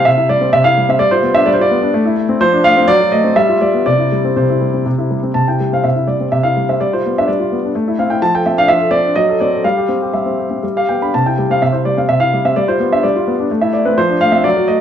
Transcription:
Already playing: C4
0.05 C3 E5
0.17 E4
0.29 G3 D5
0.41 C4
0.53 C3 E5
0.64 E4 F5
0.78 G3
0.89 C4 E5
0.99 G3 D5
1.11 F4 C5
1.22 B3
1.34 D4 E5
1.46 G3 D5
1.54 C5
1.59 F4 D5
1.71 B3
1.82 D4
1.94 A3
2.05 E4
2.29 C4
2.41 F3 C5
2.53 D4
2.64 A3 F5
2.77 C4
2.88 F#3 D5
3.00 F#4
3.12 A3 D#5
3.24 C4
3.36 G3 E5
3.49 F4
3.61 G3 D5
3.74 B3
3.86 C3 D5
3.99 E4
4.12 G3
4.24 C4
4.36 C3 C5
4.50 E4
4.61 G3
4.74 C4
4.86 C3
4.98 E4
5.11 G3
5.23 C4
5.34 C3 A5
5.48 E4 G5
5.60 G3
5.73 C4 F5
5.84 C3 E5
5.96 E4
6.07 G3 D5
6.20 C4
6.32 C3 E5
6.43 E4 F5
6.57 G3
6.69 C4 E5
6.80 G3 D5
6.93 F4 C5
7.06 B3
7.18 D4 E5
7.28 G3 D5
7.40 F4
7.52 B3
7.65 D4
7.75 A3
7.88 E4
7.99 C4 F5
8.10 E4 G5
8.22 F3 A5
8.35 A4 G5
8.46 C4 E5
8.57 D4 F5
8.68 F3 E5
8.81 A4
8.91 C4 D5
9.05 D4
9.16 F#3 D#5
9.29 A4
9.40 C4 D5
9.53 A4
9.64 G3 F5
9.77 G4
9.89 C4
10.02 G4
10.13 G3 E5
10.26 C4
10.38 G4
10.51 C4
10.63 G3
10.76 G4 F5
10.89 B3 G5
11.02 D4 B5
11.14 C3 A5
11.26 E4 G5
11.38 G3
11.50 C4 F5
11.62 C3 E5
11.72 E4 C5
11.85 G3 D5
11.98 C4 F5
12.09 C3 E5
12.20 E4 F5
12.33 G3
12.45 C4 E5
12.56 G3 D5
12.68 F4 C5
12.80 B3
12.92 D4 E5
13.03 G3 D5
13.16 F4
13.27 B3
13.39 D4
13.51 A3
13.61 E4 E5
13.73 A3 D5
13.85 C4 B4
13.98 F3 C5
14.09 D4
14.21 A3 F5
14.32 C4 E5
14.44 F#3 D5
14.57 F#4
14.68 A3 D#5

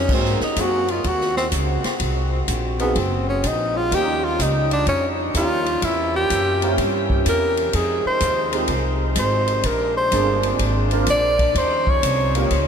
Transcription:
Already playing: C#4
0.08 G#2 C3 G#3 A#3 C4 D#4 F#4 G#4, kick, crash
0.14 C4
0.25 snare
0.40 D#4, muted upright bass stroke, snare
0.56 F#2 A#3 C4 D#4 F#4 G#4, kick, hi-hat pedal, ride
0.60 F#4
0.88 F4, ride
1.04 D#2 F#4, kick, ride
1.21 snare
1.37 C4, snare
1.52 C#2, kick, hi-hat pedal, ride
1.83 muted upright bass stroke, snare, ride
2.00 C2 C4, kick, ride
2.48 A#1, kick, hi-hat pedal, ride
2.79 A#3 B3 C4 D#4 F#4 G#4, ride
2.95 F#1 C4, kick, ride
3.29 C#4
3.44 A#1 D#4, kick, hi-hat pedal, ride
3.77 F4
3.91 D#2 C#3 F3 G3 A#3 C#4 D#4 F4 G4, kick, ride
4.24 F4
4.39 C#2 D#4, kick, hi-hat pedal, ride
4.71 D4, ride
4.86 F2 C#4, kick, ride
5.34 D#2 A#3 C#4 D#4 F4 G4, kick, hi-hat pedal, ride
5.66 ride
5.82 E2 C3 E3 A#3 C#4 E4, kick, ride
6.16 G4
6.30 F#2, kick, hi-hat pedal, ride
6.62 A#3 C4 C#4 E4 G4, ride
6.78 G2, kick, ride
7.10 kick
7.25 E2 A#4, kick, hi-hat pedal, ride
7.57 ride
7.73 F2 F3 G#3 D#4 G#4, kick, ride
8.05 C5, muted upright bass stroke
8.20 D#2, kick, hi-hat pedal, ride
8.52 G#3 C4 D#4 F4 G4, ride
8.68 C2, kick, ride
9.15 G#1 C5, kick, hi-hat pedal, ride
9.47 ride
9.62 A#1 A#3 D4 A#4, kick, ride
9.97 C5
10.11 G1 A#3 C4 D4 F4 G#4, kick, hi-hat pedal, ride
10.43 ride
10.59 G#1, kick, ride
10.91 A#3 C4 D4 F4 A#4, ride
11.06 A#1 D5, kick, hi-hat pedal, ride
11.39 kick, ride
11.55 D#2 F3 G3 C#4 D#4 C5, kick, ride
11.87 C#5, kick
12.03 C2, kick, hi-hat pedal, ride
12.35 A#3 C#4 D#4 F4 G4, ride
12.50 C#2, kick, ride

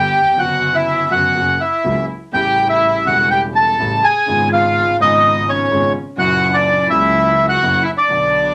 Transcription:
Already playing: G1 G2 D3 G3 B3 G4 G5
0.21 D#2
0.28 E2
0.33 F2 D3
0.38 F#1 F#2 F#3 B3 F#4 F#5
0.75 E4 E5
1.11 F#1 F#2 D3 F#3 B3 F#4 F#5
1.35 F#1 F#2 C#3 F#3 A#3 F#4
1.61 E4 E5
1.84 C#2 C#3 F#3 A#3 F#4
2.32 A1 A2 C#3 G3 A3 G4 G5
2.36 E4
2.69 E4 E5
3.05 E1 E2 C#3 G3 A3 F#4 F#5
3.09 E4
3.31 G4 G5
3.54 A4 A5
3.79 A1 A2 C#3 G3 A3 E4
4.02 G#4 G#5
4.26 G#1 G#2 C#3 G#3 B3
4.30 F4
4.53 F4 F5
4.98 G#1 G#2 C#3 G#3 B3 D#4 D#5
5.03 F4
5.48 C#4 C#5
5.71 G#1 G#2 C#3 G#3 B3 F4
6.17 F#1 F#2 A#2 F#3 A#3 E4 F#4 F#5
6.53 D4 D5
6.89 C#2 C#3 F#3 A#3 E4 E5
7.48 F#4 F#5
7.62 F#1 F#2 C#3 F#3 A#3 E4
7.83 E4 E5
7.97 D4 D5
8.08 B1 B2 D3 F#3 B3
8.13 D4

